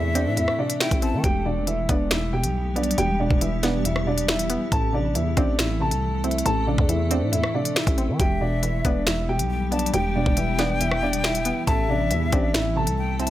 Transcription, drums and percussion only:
0.15 closed hi-hat medium
0.37 closed hi-hat medium
0.48 cross-stick medium
0.70 closed hi-hat medium
0.80 finger snap loud
0.80 snare loud
0.91 kick loud
0.91 closed hi-hat medium
1.02 closed hi-hat medium
1.24 kick loud
1.24 closed hi-hat medium
1.67 closed hi-hat medium
1.89 kick loud
1.89 closed hi-hat medium
2.11 finger snap loud
2.11 snare loud
2.11 closed hi-hat medium
2.44 closed hi-hat medium
2.76 closed hi-hat soft
2.83 closed hi-hat medium
2.91 closed hi-hat medium
2.98 closed hi-hat medium
3.31 kick loud
3.41 closed hi-hat medium
3.63 snare medium
3.63 closed hi-hat medium
3.85 closed hi-hat medium
3.96 cross-stick medium
4.18 closed hi-hat medium
4.28 finger snap loud
4.28 snare loud
4.39 closed hi-hat medium
4.50 closed hi-hat medium
4.72 kick loud
4.72 closed hi-hat medium
5.15 closed hi-hat medium
5.37 kick medium
5.37 closed hi-hat medium
5.59 finger snap loud
5.59 snare loud
5.59 closed hi-hat medium
5.91 closed hi-hat medium
6.24 closed hi-hat soft
6.31 closed hi-hat medium
6.38 closed hi-hat medium
6.46 closed hi-hat medium
6.78 kick medium
6.89 closed hi-hat medium
7.11 closed hi-hat medium
7.33 closed hi-hat medium
7.44 cross-stick loud
7.65 closed hi-hat medium
7.76 finger snap loud
7.76 snare loud
7.87 kick loud
7.87 closed hi-hat medium
7.98 closed hi-hat medium
8.20 kick loud
8.20 closed hi-hat medium
8.63 closed hi-hat medium
8.85 kick medium
8.85 closed hi-hat medium
9.07 finger snap loud
9.07 snare loud
9.07 closed hi-hat medium
9.39 closed hi-hat medium
9.72 closed hi-hat soft
9.79 closed hi-hat medium
9.86 closed hi-hat medium
9.94 closed hi-hat medium
10.26 kick medium
10.37 closed hi-hat medium
10.59 snare medium
10.59 closed hi-hat medium
10.81 closed hi-hat medium
10.91 cross-stick medium
11.13 closed hi-hat medium
11.24 finger snap loud
11.24 snare loud
11.35 closed hi-hat medium
11.45 closed hi-hat medium
11.67 kick loud
11.67 closed hi-hat medium
12.11 closed hi-hat medium
12.32 kick loud
12.32 closed hi-hat medium
12.54 finger snap loud
12.54 snare loud
12.54 closed hi-hat medium
12.87 closed hi-hat medium
13.20 closed hi-hat soft
13.27 closed hi-hat medium

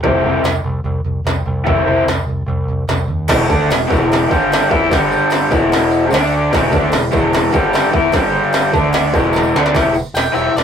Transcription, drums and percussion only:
0.03 kick loud
0.03 floor tom medium
0.24 floor tom medium
0.44 snare loud
0.44 floor tom medium
0.44 tambourine medium
0.64 floor tom medium
0.85 floor tom medium
1.04 floor tom medium
1.25 snare loud
1.25 floor tom medium
1.25 tambourine medium
1.46 floor tom medium
1.66 kick loud
1.66 floor tom medium
1.88 floor tom medium
2.07 snare loud
2.07 floor tom medium
2.07 tambourine medium
2.28 floor tom medium
2.48 floor tom medium
2.68 floor tom medium
2.88 snare loud
2.88 floor tom medium
2.88 tambourine medium
3.08 floor tom medium
3.28 kick loud
3.28 snare loud
3.28 crash loud
3.28 crash medium
3.40 tambourine soft
3.50 kick loud
3.50 tambourine medium
3.70 snare loud
3.70 tambourine loud
3.70 crash medium
3.90 kick loud
3.90 tambourine medium
4.12 snare loud
4.12 crash medium
4.31 kick loud
4.31 tambourine medium
4.41 tambourine soft
4.52 snare loud
4.52 tambourine medium
4.52 crash medium
4.62 tambourine medium
4.71 kick loud
4.91 kick loud
4.91 snare loud
4.91 crash medium
5.02 tambourine soft
5.12 tambourine medium
5.21 tambourine soft
5.30 snare loud
5.30 tambourine medium
5.30 crash medium
5.51 kick loud
5.51 tambourine medium
5.60 tambourine soft
5.72 snare loud
5.72 crash medium
5.91 tambourine medium
6.01 tambourine soft
6.10 snare loud
6.10 tambourine medium
6.10 crash medium
6.22 tambourine medium
6.53 kick loud
6.53 snare loud
6.53 crash medium
6.72 kick loud
6.72 tambourine medium
6.83 tambourine soft
6.92 snare loud
6.92 tambourine loud
6.92 crash medium
7.02 tambourine soft
7.12 kick loud
7.12 tambourine medium
7.21 tambourine soft
7.33 snare loud
7.33 crash medium
7.52 kick loud
7.52 tambourine medium
7.63 tambourine soft
7.73 snare loud
7.73 tambourine medium
7.73 crash medium
7.84 tambourine medium
7.93 kick loud
8.12 kick loud
8.12 snare loud
8.12 tambourine soft
8.12 crash medium
8.24 tambourine soft
8.44 tambourine soft
8.53 snare loud
8.53 tambourine loud
8.53 crash medium
8.64 tambourine soft
8.73 kick loud
8.73 tambourine medium
8.93 snare loud
8.93 crash medium
9.04 tambourine soft
9.14 kick loud
9.14 tambourine medium
9.24 tambourine soft
9.33 snare medium
9.33 tambourine medium
9.43 tambourine medium
9.56 snare medium
9.64 snare loud
9.64 tambourine soft
9.74 kick loud
9.74 snare loud
9.74 crash medium
9.94 tambourine medium
10.06 tambourine soft
10.15 snare loud
10.15 tambourine loud
10.15 crash medium
10.35 tambourine medium
10.57 snare loud
10.57 crash medium

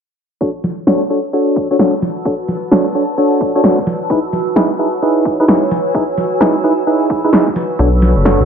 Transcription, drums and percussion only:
0.41 kick loud
0.64 snare soft
0.87 snare loud
1.56 kick loud
1.79 snare loud
2.02 snare medium
2.25 kick loud
2.48 snare soft
2.71 snare loud
3.41 kick loud
3.64 snare loud
3.78 kick medium
3.87 snare medium
4.10 kick loud
4.33 snare soft
4.56 snare loud
5.25 kick loud
5.48 snare loud
5.71 snare medium
5.94 kick loud
6.18 snare soft
6.41 snare loud
7.10 kick loud
7.33 snare loud
7.47 kick medium
7.56 snare medium
7.79 kick loud
8.02 snare soft
8.25 snare loud

